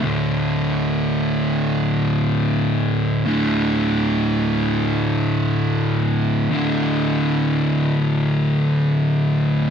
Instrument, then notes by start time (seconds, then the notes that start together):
distorted electric guitar
0.03 D2 A2 D3
3.26 D2 A2 D3
6.51 D2 A2 D3